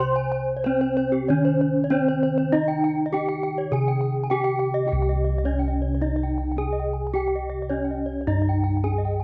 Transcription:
0.00 0.60 C3 medium
0.00 0.64 C5 medium
0.00 1.88 C5 medium
0.16 0.23 G#5 medium
0.32 0.40 G#5 medium
0.56 0.64 C#5 medium
0.64 1.29 C4 medium
0.64 0.73 C#4 soft
0.64 0.72 C5 medium
0.81 0.89 C5 medium
0.97 1.05 C5 medium
1.12 1.20 G4 medium
1.28 3.10 D#3 medium
1.28 1.92 C#4 medium
1.28 1.36 C#5 medium
1.45 1.52 C5 medium
1.61 1.68 C5 medium
1.84 1.92 C#5 medium
1.90 2.53 C4 medium
1.90 2.00 C#4 soft
1.90 1.99 C5 medium
2.08 2.15 C5 medium
2.23 2.30 C5 medium
2.38 2.45 C5 medium
2.52 3.13 D#4 medium
2.52 4.27 D#4 medium
2.52 2.61 D#5 loud
2.68 2.76 G5 medium
2.84 2.91 G5 medium
3.06 3.14 D#5 medium
3.13 3.22 C#4 soft
3.13 3.73 G4 medium
3.13 3.21 G5 medium
3.29 3.36 G5 medium
3.43 3.51 G5 medium
3.58 3.66 C#5 medium
3.72 5.40 C3 medium
3.72 4.31 G#4 medium
3.72 3.81 G#5 medium
3.88 3.95 G5 medium
4.01 4.09 G5 medium
4.24 4.31 G#5 medium
4.30 4.39 C#4 soft
4.30 4.88 G4 medium
4.30 4.38 G5 medium
4.44 4.52 G5 medium
4.59 4.67 G5 medium
4.74 4.81 D#5 medium
4.87 6.53 G4 medium
4.87 5.45 G4 soft
4.87 4.95 G5 medium
4.93 8.25 C2 loud
5.03 5.10 G5 soft
5.09 5.16 D#5 soft
5.25 5.31 D#5 soft
5.39 5.45 D#5 soft
5.44 5.52 C#4 soft
5.44 6.02 C#4 soft
5.44 5.52 C#5 medium
5.60 5.66 G5 soft
5.68 5.74 D#5 soft
5.82 5.88 C#5 soft
5.95 6.02 C#5 soft
6.02 6.58 D#4 medium
6.02 6.09 D#5 medium
6.16 6.23 D#5 soft
6.24 6.30 G5 soft
6.38 6.44 G5 soft
6.52 6.58 G5 soft
6.57 6.65 C#4 soft
6.57 7.15 G#4 medium
6.57 6.65 G#5 soft
6.73 6.79 D#5 soft
6.80 6.86 G5 soft
6.94 7.00 G#5 soft
7.07 7.14 G#5 soft
7.14 7.71 G4 medium
7.14 8.80 G4 medium
7.14 7.22 G5 medium
7.28 7.35 G5 soft
7.36 7.43 D#5 soft
7.50 7.57 D#5 soft
7.63 7.70 D#5 soft
7.70 8.27 C#4 soft
7.70 7.79 C#4 soft
7.70 7.77 C#5 medium
7.85 7.92 G5 soft
7.91 7.99 D#5 soft
8.06 8.13 C#5 soft
8.21 8.28 C#5 soft
8.27 9.24 G2 medium
8.27 8.84 D#4 medium
8.27 8.35 D#5 medium
8.42 8.49 D#5 soft
8.49 8.56 G5 soft
8.64 8.70 G5 soft
8.77 8.84 G5 soft
8.84 8.92 C#4 medium
8.84 9.24 G#4 medium
8.84 8.91 G#5 soft
8.98 9.05 D#5 soft
9.05 9.12 G5 soft
9.20 9.24 G#5 soft

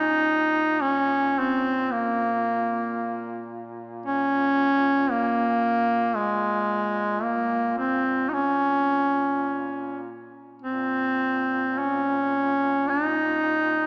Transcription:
0.00 10.46 A#2 soft
0.00 0.83 D#4 medium
0.81 1.40 C#4 medium
1.39 1.93 C4 medium
1.92 3.53 A#3 medium
4.06 5.13 C#4 loud
5.11 6.17 A#3 medium
6.16 7.25 G#3 medium
7.23 7.77 A#3 medium
7.78 8.30 C4 medium
8.29 8.35 D#4 soft
8.33 10.04 C#4 medium
10.62 13.87 A#2 soft
10.62 11.80 C4 medium
11.78 12.91 C#4 medium
12.89 13.87 D#4 medium

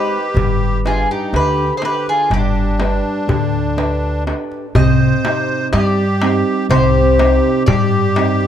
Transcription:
0.00 0.16 G#3 soft
0.00 0.27 D#4 soft
0.00 0.81 G4 medium
0.00 0.88 B4 medium
0.00 0.27 D#5 medium
0.34 1.03 G1 medium
0.34 1.31 G3 medium
0.34 darbuka dum medium
0.85 1.63 D4 soft
0.85 1.08 F4 medium
0.85 1.63 G4 soft
0.85 1.11 G#4 medium
0.85 1.63 B4 medium
0.85 darbuka tek medium
1.10 1.33 D#4 medium
1.10 1.33 G4 medium
1.10 darbuka tek soft
1.33 1.67 D2 medium
1.33 2.28 D3 medium
1.33 1.74 G4 medium
1.33 1.77 B4 medium
1.33 darbuka tek medium
1.76 1.82 G#4 medium
1.76 1.83 C5 medium
1.82 2.61 D4 soft
1.82 2.60 G4 soft
1.82 2.07 G4 medium
1.82 2.61 B4 soft
1.82 2.09 B4 medium
1.82 darbuka tek medium
2.08 2.31 F4 medium
2.08 2.33 G#4 medium
2.08 darbuka tek soft
2.30 2.99 G1 medium
2.30 3.26 G3 medium
2.30 4.23 G4 medium
2.30 darbuka tek medium
2.30 darbuka dum medium
2.35 4.24 D4 medium
2.56 darbuka tek soft
2.80 3.58 D4 soft
2.80 3.58 G4 soft
2.80 3.58 B4 medium
2.80 darbuka tek medium
3.28 4.30 D2 medium
3.28 4.23 D3 medium
3.28 darbuka dum medium
3.53 darbuka tek soft
3.77 4.25 D4 soft
3.77 4.26 G4 soft
3.77 4.26 B4 medium
3.77 darbuka tek medium
4.27 4.65 D4 soft
4.27 4.66 G4 soft
4.27 4.66 B4 soft
4.27 darbuka tek medium
4.52 darbuka tek soft
4.75 5.09 C2 loud
4.75 5.70 C3 medium
4.75 5.69 C5 medium
4.75 5.69 D#5 medium
4.75 darbuka dum loud
5.00 darbuka tek soft
5.24 6.02 C4 soft
5.24 6.03 D#4 soft
5.24 6.03 G4 medium
5.24 darbuka tek medium
5.49 darbuka tek soft
5.73 6.41 G2 medium
5.73 6.67 G3 medium
5.73 6.67 G4 medium
5.73 6.66 D5 medium
5.73 darbuka tek medium
6.22 7.00 C4 soft
6.22 7.00 D#4 soft
6.22 7.00 G4 medium
6.22 darbuka tek medium
6.69 7.38 C2 medium
6.69 7.64 C3 medium
6.69 7.63 G4 medium
6.69 7.66 C5 medium
6.69 darbuka tek medium
6.69 darbuka dum medium
6.95 darbuka tek soft
7.19 7.97 C4 soft
7.19 7.97 D#4 soft
7.19 7.97 G4 medium
7.19 darbuka tek medium
7.66 8.47 G2 medium
7.66 8.47 G3 medium
7.66 8.47 G4 medium
7.66 8.47 D5 medium
7.66 darbuka dum medium
7.92 darbuka tek soft
8.16 8.47 C4 medium
8.16 8.47 D#4 soft
8.16 8.47 G4 medium
8.16 darbuka tek medium
8.41 darbuka tek soft

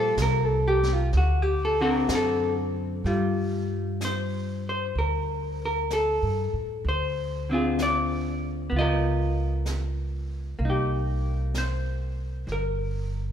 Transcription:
0.00 0.15 A#1 medium
0.00 0.71 G3 soft
0.00 0.71 A#3 medium
0.00 0.67 F4 medium
0.00 0.15 A4 medium
0.17 1.10 C2 medium
0.17 snare medium
0.17 hi-hat pedal soft
0.22 0.46 A#4 medium
0.46 0.80 A4 medium
0.68 0.93 G4 medium
0.83 snare soft
0.93 1.10 F4 medium
1.13 2.06 D2 medium
1.13 brush sweep soft
1.13 snare soft
1.17 1.42 F#4 medium
1.42 1.76 G4 medium
1.65 1.81 A4 medium
1.81 3.00 D3 medium
1.81 3.00 C4 medium
1.81 3.00 F#4 medium
1.81 1.91 A4 medium
1.91 2.07 A#4 medium
2.09 3.02 F#2 medium
2.09 snare medium
2.09 hi-hat pedal medium
2.15 2.53 A4 medium
3.04 4.91 G2 medium
3.04 6.85 G3 soft
3.04 6.86 F4 soft
3.04 brush sweep soft
3.04 snare soft
4.01 brush sweep soft
4.01 snare soft
4.01 hi-hat pedal medium
4.05 4.64 C5 medium
4.69 4.95 C5 medium
4.95 6.18 D2 medium
4.95 5.64 A#4 medium
4.95 brush sweep soft
5.65 5.93 A#4 medium
5.90 6.82 A4 medium
5.90 brush sweep soft
5.90 snare soft
5.90 hi-hat pedal soft
6.22 6.51 G2 medium
6.53 6.83 A2 medium
6.85 8.68 D2 medium
6.85 brush sweep soft
6.89 7.54 C5 medium
7.49 8.72 D3 soft
7.49 8.69 C4 soft
7.49 8.74 F4 soft
7.54 7.82 G#4 soft
7.79 8.77 D5 medium
7.79 brush sweep soft
7.79 snare soft
7.79 hi-hat pedal medium
8.70 10.55 C#2 medium
8.70 10.58 B3 medium
8.70 brush sweep soft
8.76 10.62 F4 soft
8.76 10.30 D#5 medium
8.81 10.64 A#4 medium
9.66 brush sweep soft
9.66 snare soft
9.66 hi-hat pedal medium
10.59 12.43 C2 medium
10.59 13.32 A#3 soft
10.59 brush sweep soft
10.65 13.32 D#4 soft
10.70 13.32 G4 soft
11.54 12.52 C5 medium
11.54 brush sweep soft
11.54 snare soft
11.54 hi-hat pedal soft
12.47 13.32 G1 medium
12.47 brush sweep soft
12.47 snare soft
12.52 13.32 A#4 medium

